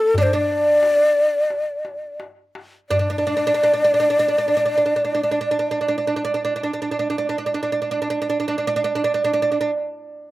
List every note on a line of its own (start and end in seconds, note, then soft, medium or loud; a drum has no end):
0.00 0.21 A#3 medium
0.00 0.17 A4 medium
0.14 0.32 D4 medium
0.14 darbuka dum medium
0.19 0.36 C5 medium
0.19 0.24 D5 medium
0.33 2.16 D4 medium
0.33 2.20 D5 medium
0.83 darbuka tek medium
1.50 darbuka tek medium
1.85 darbuka ka medium
2.20 darbuka tek medium
2.55 darbuka ka medium
2.90 2.98 D4 medium
2.90 6.03 D5 medium
2.90 darbuka dum medium
2.99 3.07 D4 soft
3.10 3.17 D4 medium
3.18 3.26 D4 soft
3.27 3.35 D4 medium
3.37 3.45 D4 medium
3.47 3.53 D4 medium
3.54 3.62 D4 medium
3.63 3.72 D4 medium
3.74 3.82 D4 medium
3.84 3.92 D4 medium
3.94 3.99 D4 medium
4.00 4.09 D4 medium
4.10 4.18 D4 medium
4.19 4.27 D4 medium
4.28 4.37 D4 medium
4.38 4.47 D4 medium
4.48 4.56 D4 soft
4.57 4.64 D4 medium
4.66 4.74 D4 soft
4.78 4.85 D4 soft
4.86 4.94 D4 soft
4.96 5.03 D4 medium
5.05 5.13 D4 soft
5.15 5.22 D4 medium
5.23 5.30 D4 soft
5.31 5.40 D4 medium
5.41 5.49 D4 medium
5.51 5.58 D4 medium
5.59 5.68 D4 medium
5.71 5.79 D4 medium
5.81 5.87 D4 soft
5.88 5.97 D4 medium
5.98 6.06 D4 soft
6.07 6.15 D4 medium
6.16 6.23 D4 medium
6.25 6.33 D4 medium
6.34 6.43 D4 medium
6.45 6.53 D4 medium
6.56 6.62 D4 soft
6.63 6.72 D4 soft
6.74 6.81 D4 soft
6.82 6.90 D4 soft
6.91 6.98 D4 soft
6.99 7.08 D4 medium
7.10 7.17 D4 soft
7.18 7.27 D4 medium
7.29 7.37 D4 soft
7.38 7.45 D4 medium
7.46 7.53 D4 soft
7.54 7.62 D4 medium
7.63 7.71 D4 medium
7.72 7.81 D4 medium
7.82 7.90 D4 soft
7.91 8.01 D4 medium
8.02 8.09 D4 soft
8.10 8.20 D4 medium
8.22 8.28 D4 medium
8.30 8.39 D4 medium
8.40 8.47 D4 soft
8.48 8.57 D4 medium
8.58 8.66 D4 medium
8.67 8.75 D4 medium
8.76 8.83 D4 medium
8.84 8.94 D4 medium
8.95 9.03 D4 medium
9.04 9.13 D4 medium
9.14 9.23 D4 medium
9.24 9.32 D4 medium
9.33 9.41 D4 medium
9.42 9.50 D4 medium
9.52 9.60 D4 soft
9.61 9.70 D4 medium